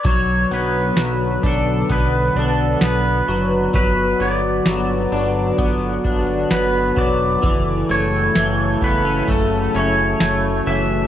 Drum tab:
HH |x-x-x-x-|x-x-x-x-|x-x-x-x-|
SD |--o---o-|--o---o-|--o---o-|
BD |o--oo---|o---oo-o|o--oo---|